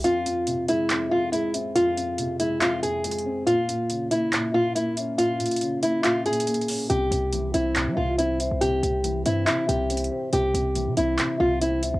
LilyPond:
<<
  \new Staff \with { instrumentName = "Nylon-string guitar" } { \time 4/4 \key f \minor \tempo 4 = 140 f'4. e'4 f'8 e'8 r8 | f'4. e'8 f'8 aes'4. | f'4. e'4 f'8 e'8 r8 | f'4. e'8 f'8 aes'4. |
g'4. e'4 f'8 e'8 r8 | g'4. e'8 e'8 g'4. | g'4. e'4 f'8 e'8 r8 | }
  \new Staff \with { instrumentName = "Felt piano" } { \clef bass \time 4/4 \key f \minor f,8 f,8 c8 aes8 f,8 f,8 aes8 c'8 | f,8 f,8 c8 aes8 f,8 f,8 aes8 c'8 | bes,8 bes,8 des8 bes8 bes,8 bes,8 bes8 des'8 | bes,8 bes,8 des8 bes8 bes,8 bes,8 bes8 des'8 |
c8 c8 e8 c'8 c8 c8 c'8 c''8 | c8 c8 e8 c'8 c8 c8 c'8 c''8 | c8 c8 e8 c'8 c8 c8 c'8 c''8 | }
  \new Staff \with { instrumentName = "808-style bass" } { \clef bass \time 4/4 \key f \minor r1 | r1 | r1 | r1 |
c,8 c,4 c,8. g16 c,4~ c,16 c,16~ | c,8 c,4 g,8 r8 c,4 r8 | c,8 c,8. c16 c,8 r8 c,4 des,16 c,16 | }
  \new DrumStaff \with { instrumentName = "Drums" } \drummode { \time 4/4 hh8 hh8 hh8 hh8 <hc hh>4 hh8 hh8 | hh8 hh8 hh8 hh8 <hc hh>8 hh8 \tuplet 3/2 { hh16 hh16 hh16 r16 r16 r16 } | hh8 hh8 hh8 hh8 <hc hh>4 hh8 hh8 | hh8 hh32 hh32 hh32 hh32 hh8 hh8 \tuplet 3/2 { <hc hh>16 r16 r16 hh16 hh16 hh16 hh16 hh16 hh16 hho16 r16 r16 } |
hh8 hh8 hh8 hh8 <hc hh>4 hh8 hh8 | hh8 hh8 hh8 hh8 <hc hh>8 hh8 \tuplet 3/2 { hh16 hh16 hh16 r16 r16 r16 } | hh8 hh8 hh8 hh8 <hc hh>4 hh8 hh8 | }
>>